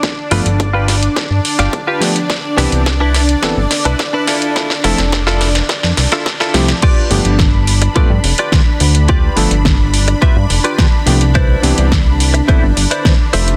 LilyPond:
<<
  \new Staff \with { instrumentName = "Analog synth pad" } { \time 4/4 \key g \mixolydian \tempo 4 = 106 <d' d''>1~ | <d' d''>1~ | <d' d''>1 | <d' b''>1~ |
<d' b''>1~ | <d' b''>1 | }
  \new Staff \with { instrumentName = "Clean electric guitar" } { \time 4/4 \key g \mixolydian r8 <f' g' b'>16 r8 <f' g' b'>16 r4 r16 <f' g' d''>16 r16 <f' g' b'>16 r8 | r8 <d' e' b'>16 r8 <d' e' b'>16 r4 r16 <d' e' b'>16 r16 <d' e' b'>16 <e' f' a'>8~ | <e' f' a'>16 r16 <e' f' a'>16 r8 <e' f' a'>16 r4 r16 <e' f' a'>16 r16 <e' f' a'>16 r8 | <f' g' b' d''>8 r4. <f' g' b' d''>16 r8 <f' g' b' d''>16 r4 |
<f' g' b' d''>8 r4. <f' g' b' e''>16 r8 <f' g' b' d''>16 r4 | <e' b' c'' d''>8 r4. <e' b' c'' e''>16 r8 <e' b' c'' d''>16 r8 <f' a' c'' e''>8 | }
  \new Staff \with { instrumentName = "Electric grand piano" } { \time 4/4 \key g \mixolydian r8 <f a b d' a'>16 r2 r8. <f a b d' g'>16 r16 | r8 <e b c' d' g'>8 r4 <e b c' d' a'>16 r4. r16 | r8 <f a c' e' a'>16 r2 r8. <f a c' e' g'>16 r16 | r8 <f a b d' g'>8 r4 <f a b d' a'>16 r4. r16 |
r8 <f a b d' a'>16 r2 r8. <f a b d' g'>16 r16 | r8 <e b c' d' g'>8 r4 <e b c' d' a'>16 r4. r16 | }
  \new Staff \with { instrumentName = "Analog synth bass" } { \clef bass \time 4/4 \key g \mixolydian r8 g,,16 g,,4 r8 g,16 r16 g,,16 r4 | r8 c,16 c,4 r16 g,,16 g,,16 r16 c,16 r4 | r8 f,,16 f,,4 r8 f,16 c,16 r8. c,16 r16 | r8 g,,16 g,,4 r16 g,16 g,16 f,,16 r8. d,8~ |
d,16 r16 g,,16 g,,4 r8 g,16 f,,16 r8. c,8~ | c,16 r16 c,16 c,4 r16 g,,16 g,,16 g,,16 r8. f,,8 | }
  \new DrumStaff \with { instrumentName = "Drums" } \drummode { \time 4/4 <hh bd sn>8 hho16 hh16 <hh bd>8 <hho sn>16 hh16 <hh bd sn>8 hho16 <hh sn>16 <hh bd>8 <hho sn>16 hh16 | <hh bd sn>8 <hho sn>16 hh16 <hh bd sn>8 <hho sn>16 hh16 <hh bd sn>8 <hho sn>16 hh16 <hh bd sn>8 <hho sn>16 hh16 | <hh bd sn>16 sn16 <hho sn>16 <hh sn>16 <hh bd sn>16 sn16 <hho sn>16 <hh sn>16 <hh bd sn>16 sn16 <hho sn>16 <hh sn>16 <hh bd sn>16 sn16 <hho sn>16 <hh sn>16 | <cymc hh bd>8 hho16 hh16 <hh bd sn>8 hho16 hh16 <hh bd>8 hho16 hh16 <hh bd sn>8 hho16 hh16 |
<hh bd>8 hho16 hh16 <hh bd sn>8 hho16 hh16 <hh bd>8 hho16 hh16 <hh bd sn>8 hho16 hh16 | <hh bd>8 hho16 hh16 <hh bd sn>8 hho16 hh16 <hh bd>8 hho16 hh16 <hh bd sn>8 hho16 hh16 | }
>>